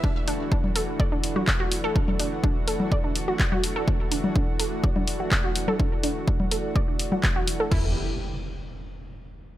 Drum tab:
CC |----------------|----------------|----------------|----------------|
HH |--o---o---o---o-|--o---o---o---o-|--o---o---o---o-|--o---o---o---o-|
CP |------------x---|------------x---|------------x---|------------x---|
CG |-----O-----O----|-O-----O-----O--|---O-----O-----O|-----O-----O----|
BD |o---o---o---o---|o---o---o---o---|o---o---o---o---|o---o---o---o---|

CC |x---------------|
HH |----------------|
CP |----------------|
CG |----------------|
BD |o---------------|